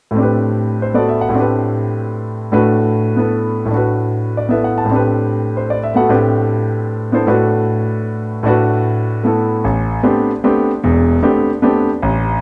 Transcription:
0.11 A2 A3
0.15 C4 D4
0.20 G4 B4
0.82 C5
0.94 A3 B3 F#4 A4 D5
1.09 E5
1.21 F#5
1.29 A2 A3
1.34 C4 D4
1.38 G4 B4
2.52 A2 A3 D4 F#4 B4
3.16 B3 E4 A4 B4
3.65 A2 A3
3.71 D4 F#4
3.77 B4
4.37 D5
4.49 B3 E4 A4 B4 E5
4.64 F#5
4.78 A5
4.85 A2 A3
4.89 C4 D4
4.93 G4 B4
5.57 C5
5.70 D5
5.83 E5
5.94 A3 B3 F#4 A4 F#5
6.09 A2 A3 C4 D4 G4 B4
7.12 B3 D4 E4 A4 C5
7.27 A2 A3 D4 F#4 B4
8.43 A2 A3 D4 F#4
8.48 B4
9.23 A3 B3 E4 A4
9.64 A1
10.03 A3 B3 C4 D4 G4
10.44 A3 B3 C4 D4 G4
10.84 E1 E2
11.23 A3 B3 C4 D4 G4
11.62 A3 B3 C4 D4 G4
12.02 A1

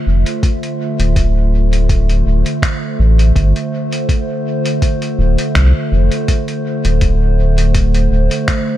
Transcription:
Already playing: D3 A3 F4 C5 E5
0.07 F1
0.26 closed hi-hat
0.43 kick, closed hi-hat
0.63 closed hi-hat
1.00 D1, closed hi-hat
1.16 D1, kick, closed hi-hat
1.73 closed hi-hat
1.89 kick, closed hi-hat
2.09 closed hi-hat
2.26 D1
2.46 closed hi-hat
2.62 finger snap, kick, closed hi-hat
2.99 A1
3.19 closed hi-hat
3.36 G1, kick, closed hi-hat
3.56 closed hi-hat
3.92 closed hi-hat
4.09 kick, closed hi-hat
4.65 closed hi-hat
4.82 kick, closed hi-hat
5.02 closed hi-hat
5.19 D1
5.38 closed hi-hat
5.55 C2, finger snap, kick, closed hi-hat
5.92 F1
6.12 closed hi-hat
6.28 kick, closed hi-hat
6.48 closed hi-hat
6.85 D1, closed hi-hat
7.01 D1, kick, closed hi-hat
7.58 closed hi-hat
7.75 kick, closed hi-hat
7.94 closed hi-hat
8.11 D1
8.31 closed hi-hat
8.48 finger snap, kick, closed hi-hat

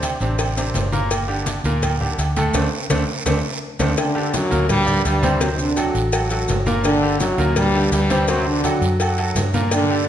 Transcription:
Already playing: D2 C3 C4 D4
0.02 cowbell, high conga, low agogo, short guiro, maracas
0.20 A1 C3 C4 D4, high conga, short guiro, maracas
0.39 cowbell, high conga, low agogo, long guiro, maracas
0.57 C3 C4 D4, cowbell, high conga, maracas
0.74 G1, cowbell, high conga, low timbale, low agogo, short guiro, maracas
0.92 A#2 A#3 A#4, high conga, short guiro, maracas
1.11 cowbell, high conga, low agogo, long guiro, maracas
1.28 D3 D4 G4, high conga
1.46 cowbell, high conga, low agogo, short guiro, maracas
1.64 D2 A#2 A#3 A#4, high conga, short guiro, maracas
1.82 cowbell, high conga, low conga, low agogo, long guiro, maracas
2.00 D3 D4 G4, high conga, low conga
2.18 D2, cowbell, high conga, low agogo, short guiro, maracas
2.36 A2 A3 A4, cowbell, high conga, low agogo, short guiro, maracas
2.54 D2 A3 C4 D4, cowbell, high conga, high timbale, long guiro, maracas
2.90 D2 A3 C4 D4, cowbell, high conga, high timbale, long guiro, maracas
3.26 D2 A3 C4 D4, cowbell, high conga, high timbale, long guiro, maracas
3.79 D2 A3 C4 D4, cowbell, high conga, high timbale, long guiro, maracas
3.97 D3 D4, cowbell, high conga, low agogo, long guiro, maracas
4.15 D3 D4 G4, high conga
4.34 F#2 F#3, cowbell, high conga, low agogo, short guiro, maracas
4.51 D2 A#2 A#3 A#4, high conga, short guiro, maracas
4.69 G2 G3, cowbell, high conga, low conga, low agogo, long guiro, maracas
4.86 D3 D4 G4, high conga, low conga, maracas
5.05 D2 G2 G3, cowbell, low agogo, short guiro, maracas
5.22 C3 C4 C5, cowbell, high conga, low agogo, short guiro, maracas
5.40 F#2 C3 F#3 C4 C5, cowbell, high conga, low agogo, long guiro, maracas
5.52 D#3
5.59 D3 D4, high conga, maracas
5.76 F#3 F#4 A4, cowbell, high conga, low agogo, short guiro, maracas
5.95 A1, high conga, short guiro, maracas
6.12 F#3 F#4 A4, cowbell, high conga, low agogo, long guiro, maracas
6.30 F#3 F#4 A4, cowbell, high conga, maracas
6.48 G1, cowbell, high conga, low timbale, low agogo, short guiro, maracas
6.66 A#2 A#3 A#4, high conga, short guiro, maracas
6.84 D3 D4, cowbell, high conga, low agogo, long guiro, maracas
7.03 D3 D4 G4, high conga
7.20 F#2 F#3, cowbell, high conga, low agogo, short guiro, maracas
7.38 D2 A#2 A#3 A#4, high conga, short guiro, maracas
7.56 G2 G3, cowbell, high conga, low conga, low agogo, long guiro, maracas
7.74 D3 D4 G4
7.92 D2 G2 G3, cowbell, high conga, low agogo, short guiro, maracas
8.10 C3 C4 C5, cowbell, high conga, low agogo, short guiro, maracas
8.28 F#2 C3 F#3 C4 C5, cowbell, high conga, low agogo, long guiro, maracas
8.47 D3 D4, high conga
8.64 F#3 F#4 A4, cowbell, high conga, low agogo, short guiro, maracas
8.81 F#2, high conga, short guiro, maracas
9.00 F#3 F#4 A4, cowbell, high conga, low agogo, long guiro, maracas
9.18 F#3 F#4 A4, cowbell, high conga
9.35 G2, cowbell, high conga, low timbale, low agogo, short guiro, maracas
9.54 A#2 A#3 A#4, high conga, short guiro, maracas
9.71 D3 D4, cowbell, high conga, low agogo, long guiro, maracas
9.90 D3 D4 G4, high conga

